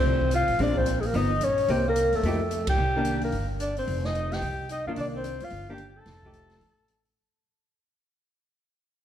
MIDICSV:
0, 0, Header, 1, 6, 480
1, 0, Start_track
1, 0, Tempo, 273349
1, 1054, Time_signature, 4, 2, 24, 8
1, 15881, End_track
2, 0, Start_track
2, 0, Title_t, "Clarinet"
2, 0, Program_c, 0, 71
2, 0, Note_on_c, 0, 72, 84
2, 537, Note_off_c, 0, 72, 0
2, 619, Note_on_c, 0, 77, 90
2, 1043, Note_off_c, 0, 77, 0
2, 1089, Note_on_c, 0, 74, 83
2, 1363, Note_on_c, 0, 72, 83
2, 1390, Note_off_c, 0, 74, 0
2, 1765, Note_on_c, 0, 68, 59
2, 1791, Note_off_c, 0, 72, 0
2, 1877, Note_on_c, 0, 70, 80
2, 1903, Note_off_c, 0, 68, 0
2, 2043, Note_on_c, 0, 75, 82
2, 2069, Note_off_c, 0, 70, 0
2, 2531, Note_on_c, 0, 73, 85
2, 2557, Note_off_c, 0, 75, 0
2, 2998, Note_on_c, 0, 72, 81
2, 3025, Note_off_c, 0, 73, 0
2, 3276, Note_off_c, 0, 72, 0
2, 3322, Note_on_c, 0, 70, 84
2, 3786, Note_on_c, 0, 69, 69
2, 3812, Note_off_c, 0, 70, 0
2, 4718, Note_off_c, 0, 69, 0
2, 4729, Note_on_c, 0, 79, 85
2, 5608, Note_off_c, 0, 79, 0
2, 5697, Note_on_c, 0, 70, 75
2, 6126, Note_off_c, 0, 70, 0
2, 6353, Note_on_c, 0, 74, 75
2, 6614, Note_off_c, 0, 74, 0
2, 6652, Note_on_c, 0, 72, 81
2, 7120, Note_on_c, 0, 75, 81
2, 7146, Note_off_c, 0, 72, 0
2, 7608, Note_on_c, 0, 79, 87
2, 7635, Note_off_c, 0, 75, 0
2, 8263, Note_off_c, 0, 79, 0
2, 8285, Note_on_c, 0, 75, 82
2, 8542, Note_off_c, 0, 75, 0
2, 8555, Note_on_c, 0, 77, 78
2, 8637, Note_off_c, 0, 77, 0
2, 8778, Note_on_c, 0, 74, 87
2, 8899, Note_off_c, 0, 74, 0
2, 9081, Note_on_c, 0, 72, 91
2, 9560, Note_on_c, 0, 77, 83
2, 9586, Note_off_c, 0, 72, 0
2, 10013, Note_off_c, 0, 77, 0
2, 10073, Note_on_c, 0, 79, 79
2, 10357, Note_off_c, 0, 79, 0
2, 10357, Note_on_c, 0, 79, 63
2, 10529, Note_on_c, 0, 81, 84
2, 10555, Note_off_c, 0, 79, 0
2, 12420, Note_off_c, 0, 81, 0
2, 15881, End_track
3, 0, Start_track
3, 0, Title_t, "Alto saxophone"
3, 0, Program_c, 1, 65
3, 0, Note_on_c, 1, 60, 77
3, 529, Note_off_c, 1, 60, 0
3, 597, Note_on_c, 1, 65, 79
3, 1031, Note_off_c, 1, 65, 0
3, 1054, Note_on_c, 1, 62, 64
3, 1342, Note_on_c, 1, 60, 72
3, 1368, Note_off_c, 1, 62, 0
3, 1758, Note_on_c, 1, 56, 46
3, 1784, Note_off_c, 1, 60, 0
3, 1844, Note_on_c, 1, 58, 68
3, 1870, Note_off_c, 1, 56, 0
3, 2034, Note_on_c, 1, 63, 78
3, 2060, Note_off_c, 1, 58, 0
3, 2517, Note_on_c, 1, 61, 69
3, 2543, Note_off_c, 1, 63, 0
3, 3009, Note_on_c, 1, 60, 64
3, 3035, Note_off_c, 1, 61, 0
3, 3281, Note_off_c, 1, 60, 0
3, 3291, Note_on_c, 1, 58, 62
3, 3775, Note_on_c, 1, 57, 53
3, 3801, Note_off_c, 1, 58, 0
3, 4698, Note_off_c, 1, 57, 0
3, 4709, Note_on_c, 1, 67, 76
3, 5598, Note_off_c, 1, 67, 0
3, 5670, Note_on_c, 1, 58, 55
3, 6112, Note_off_c, 1, 58, 0
3, 6319, Note_on_c, 1, 62, 64
3, 6596, Note_off_c, 1, 62, 0
3, 6635, Note_on_c, 1, 60, 64
3, 7109, Note_on_c, 1, 63, 71
3, 7135, Note_off_c, 1, 60, 0
3, 7582, Note_on_c, 1, 67, 65
3, 7608, Note_off_c, 1, 63, 0
3, 8249, Note_off_c, 1, 67, 0
3, 8264, Note_on_c, 1, 63, 63
3, 8530, Note_off_c, 1, 63, 0
3, 8561, Note_on_c, 1, 65, 61
3, 8641, Note_off_c, 1, 65, 0
3, 8735, Note_on_c, 1, 62, 61
3, 8866, Note_off_c, 1, 62, 0
3, 9043, Note_on_c, 1, 60, 69
3, 9525, Note_on_c, 1, 65, 72
3, 9551, Note_off_c, 1, 60, 0
3, 9992, Note_off_c, 1, 65, 0
3, 10002, Note_on_c, 1, 67, 80
3, 10309, Note_off_c, 1, 67, 0
3, 10309, Note_on_c, 1, 67, 55
3, 10474, Note_on_c, 1, 69, 82
3, 10500, Note_off_c, 1, 67, 0
3, 12392, Note_off_c, 1, 69, 0
3, 15881, End_track
4, 0, Start_track
4, 0, Title_t, "Hollow-body jazz guitar"
4, 0, Program_c, 2, 26
4, 0, Note_on_c, 2, 53, 47
4, 0, Note_on_c, 2, 57, 42
4, 0, Note_on_c, 2, 63, 48
4, 0, Note_on_c, 2, 67, 53
4, 326, Note_off_c, 2, 53, 0
4, 330, Note_off_c, 2, 57, 0
4, 332, Note_off_c, 2, 67, 0
4, 336, Note_off_c, 2, 63, 0
4, 1055, Note_on_c, 2, 60, 60
4, 1056, Note_on_c, 2, 56, 54
4, 1076, Note_on_c, 2, 62, 52
4, 1317, Note_off_c, 2, 60, 0
4, 1318, Note_off_c, 2, 56, 0
4, 1328, Note_off_c, 2, 62, 0
4, 2008, Note_on_c, 2, 53, 56
4, 2020, Note_on_c, 2, 59, 67
4, 2030, Note_on_c, 2, 63, 70
4, 2272, Note_off_c, 2, 53, 0
4, 2278, Note_off_c, 2, 59, 0
4, 2283, Note_off_c, 2, 63, 0
4, 2979, Note_on_c, 2, 58, 54
4, 2987, Note_on_c, 2, 63, 60
4, 2992, Note_on_c, 2, 67, 65
4, 3237, Note_off_c, 2, 58, 0
4, 3241, Note_off_c, 2, 63, 0
4, 3243, Note_off_c, 2, 67, 0
4, 3961, Note_on_c, 2, 57, 61
4, 3963, Note_on_c, 2, 53, 57
4, 3979, Note_on_c, 2, 63, 56
4, 3988, Note_on_c, 2, 67, 60
4, 4208, Note_off_c, 2, 53, 0
4, 4208, Note_off_c, 2, 57, 0
4, 4217, Note_off_c, 2, 63, 0
4, 4221, Note_off_c, 2, 67, 0
4, 5207, Note_on_c, 2, 51, 59
4, 5227, Note_on_c, 2, 58, 49
4, 5232, Note_on_c, 2, 62, 56
4, 5823, Note_off_c, 2, 51, 0
4, 5833, Note_off_c, 2, 58, 0
4, 5836, Note_off_c, 2, 62, 0
4, 8568, Note_on_c, 2, 51, 58
4, 8586, Note_on_c, 2, 62, 57
4, 8588, Note_on_c, 2, 58, 56
4, 9186, Note_off_c, 2, 51, 0
4, 9195, Note_off_c, 2, 62, 0
4, 9196, Note_off_c, 2, 58, 0
4, 10001, Note_on_c, 2, 51, 46
4, 10008, Note_on_c, 2, 58, 54
4, 10018, Note_on_c, 2, 62, 62
4, 10162, Note_off_c, 2, 51, 0
4, 10165, Note_off_c, 2, 58, 0
4, 10170, Note_off_c, 2, 62, 0
4, 10979, Note_on_c, 2, 53, 46
4, 10991, Note_on_c, 2, 57, 47
4, 10993, Note_on_c, 2, 63, 51
4, 10998, Note_on_c, 2, 67, 58
4, 11593, Note_off_c, 2, 53, 0
4, 11599, Note_off_c, 2, 57, 0
4, 11600, Note_off_c, 2, 63, 0
4, 11603, Note_off_c, 2, 67, 0
4, 15881, End_track
5, 0, Start_track
5, 0, Title_t, "Upright bass"
5, 0, Program_c, 3, 32
5, 70, Note_on_c, 3, 36, 85
5, 799, Note_off_c, 3, 36, 0
5, 854, Note_on_c, 3, 33, 63
5, 1020, Note_off_c, 3, 33, 0
5, 1031, Note_on_c, 3, 34, 90
5, 1951, Note_off_c, 3, 34, 0
5, 1993, Note_on_c, 3, 31, 85
5, 2446, Note_off_c, 3, 31, 0
5, 2476, Note_on_c, 3, 34, 72
5, 2928, Note_off_c, 3, 34, 0
5, 2954, Note_on_c, 3, 36, 83
5, 3679, Note_off_c, 3, 36, 0
5, 3727, Note_on_c, 3, 42, 63
5, 3907, Note_off_c, 3, 42, 0
5, 3915, Note_on_c, 3, 41, 77
5, 4833, Note_off_c, 3, 41, 0
5, 4880, Note_on_c, 3, 36, 81
5, 5796, Note_off_c, 3, 36, 0
5, 5838, Note_on_c, 3, 31, 74
5, 6755, Note_off_c, 3, 31, 0
5, 6802, Note_on_c, 3, 29, 80
5, 7718, Note_off_c, 3, 29, 0
5, 7759, Note_on_c, 3, 36, 74
5, 8484, Note_off_c, 3, 36, 0
5, 8540, Note_on_c, 3, 43, 58
5, 8702, Note_off_c, 3, 43, 0
5, 8713, Note_on_c, 3, 36, 81
5, 9441, Note_off_c, 3, 36, 0
5, 9503, Note_on_c, 3, 43, 57
5, 9661, Note_off_c, 3, 43, 0
5, 9672, Note_on_c, 3, 31, 82
5, 10595, Note_off_c, 3, 31, 0
5, 10637, Note_on_c, 3, 29, 82
5, 11558, Note_off_c, 3, 29, 0
5, 11608, Note_on_c, 3, 33, 73
5, 12524, Note_off_c, 3, 33, 0
5, 15881, End_track
6, 0, Start_track
6, 0, Title_t, "Drums"
6, 376, Note_on_c, 9, 36, 53
6, 545, Note_on_c, 9, 42, 50
6, 551, Note_off_c, 9, 36, 0
6, 720, Note_off_c, 9, 42, 0
6, 836, Note_on_c, 9, 46, 34
6, 1012, Note_off_c, 9, 46, 0
6, 1031, Note_on_c, 9, 46, 37
6, 1038, Note_on_c, 9, 36, 32
6, 1207, Note_off_c, 9, 46, 0
6, 1214, Note_off_c, 9, 36, 0
6, 1330, Note_on_c, 9, 36, 46
6, 1505, Note_off_c, 9, 36, 0
6, 1507, Note_on_c, 9, 42, 49
6, 1682, Note_off_c, 9, 42, 0
6, 1803, Note_on_c, 9, 46, 35
6, 1978, Note_off_c, 9, 46, 0
6, 1995, Note_on_c, 9, 46, 39
6, 1997, Note_on_c, 9, 36, 27
6, 2171, Note_off_c, 9, 46, 0
6, 2173, Note_off_c, 9, 36, 0
6, 2471, Note_on_c, 9, 42, 52
6, 2647, Note_off_c, 9, 42, 0
6, 2767, Note_on_c, 9, 46, 34
6, 2943, Note_off_c, 9, 46, 0
6, 2954, Note_on_c, 9, 46, 40
6, 2960, Note_on_c, 9, 36, 29
6, 3130, Note_off_c, 9, 46, 0
6, 3136, Note_off_c, 9, 36, 0
6, 3434, Note_on_c, 9, 42, 51
6, 3610, Note_off_c, 9, 42, 0
6, 3731, Note_on_c, 9, 46, 32
6, 3906, Note_off_c, 9, 46, 0
6, 3919, Note_on_c, 9, 46, 39
6, 3921, Note_on_c, 9, 36, 30
6, 4095, Note_off_c, 9, 46, 0
6, 4097, Note_off_c, 9, 36, 0
6, 4402, Note_on_c, 9, 42, 47
6, 4577, Note_off_c, 9, 42, 0
6, 4687, Note_on_c, 9, 51, 62
6, 4694, Note_on_c, 9, 36, 66
6, 4862, Note_off_c, 9, 51, 0
6, 4870, Note_off_c, 9, 36, 0
6, 5349, Note_on_c, 9, 42, 44
6, 5525, Note_off_c, 9, 42, 0
6, 5643, Note_on_c, 9, 46, 33
6, 5818, Note_off_c, 9, 46, 0
6, 5832, Note_on_c, 9, 46, 37
6, 5843, Note_on_c, 9, 36, 28
6, 6007, Note_off_c, 9, 46, 0
6, 6018, Note_off_c, 9, 36, 0
6, 6317, Note_on_c, 9, 42, 49
6, 6493, Note_off_c, 9, 42, 0
6, 6611, Note_on_c, 9, 46, 33
6, 6787, Note_off_c, 9, 46, 0
6, 6803, Note_on_c, 9, 46, 41
6, 6809, Note_on_c, 9, 36, 27
6, 6979, Note_off_c, 9, 46, 0
6, 6985, Note_off_c, 9, 36, 0
6, 7101, Note_on_c, 9, 38, 34
6, 7277, Note_off_c, 9, 38, 0
6, 7287, Note_on_c, 9, 42, 42
6, 7463, Note_off_c, 9, 42, 0
6, 7579, Note_on_c, 9, 46, 33
6, 7588, Note_on_c, 9, 38, 42
6, 7755, Note_off_c, 9, 46, 0
6, 7758, Note_on_c, 9, 46, 37
6, 7764, Note_off_c, 9, 38, 0
6, 7767, Note_on_c, 9, 36, 29
6, 7934, Note_off_c, 9, 46, 0
6, 7942, Note_off_c, 9, 36, 0
6, 8238, Note_on_c, 9, 42, 46
6, 8414, Note_off_c, 9, 42, 0
6, 8711, Note_on_c, 9, 46, 38
6, 8724, Note_on_c, 9, 36, 28
6, 8887, Note_off_c, 9, 46, 0
6, 8899, Note_off_c, 9, 36, 0
6, 9199, Note_on_c, 9, 42, 44
6, 9375, Note_off_c, 9, 42, 0
6, 9485, Note_on_c, 9, 46, 35
6, 9661, Note_off_c, 9, 46, 0
6, 9661, Note_on_c, 9, 46, 33
6, 9679, Note_on_c, 9, 36, 28
6, 9837, Note_off_c, 9, 46, 0
6, 9855, Note_off_c, 9, 36, 0
6, 10147, Note_on_c, 9, 42, 42
6, 10323, Note_off_c, 9, 42, 0
6, 10633, Note_on_c, 9, 46, 37
6, 10642, Note_on_c, 9, 36, 27
6, 10642, Note_on_c, 9, 38, 30
6, 10809, Note_off_c, 9, 46, 0
6, 10817, Note_off_c, 9, 36, 0
6, 10817, Note_off_c, 9, 38, 0
6, 10939, Note_on_c, 9, 36, 44
6, 11115, Note_off_c, 9, 36, 0
6, 11122, Note_on_c, 9, 42, 42
6, 11298, Note_off_c, 9, 42, 0
6, 11407, Note_on_c, 9, 46, 31
6, 11416, Note_on_c, 9, 38, 28
6, 11583, Note_off_c, 9, 46, 0
6, 11592, Note_off_c, 9, 38, 0
6, 11604, Note_on_c, 9, 46, 36
6, 11607, Note_on_c, 9, 36, 25
6, 11779, Note_off_c, 9, 46, 0
6, 11783, Note_off_c, 9, 36, 0
6, 12081, Note_on_c, 9, 42, 46
6, 12257, Note_off_c, 9, 42, 0
6, 12381, Note_on_c, 9, 46, 32
6, 12557, Note_off_c, 9, 46, 0
6, 15881, End_track
0, 0, End_of_file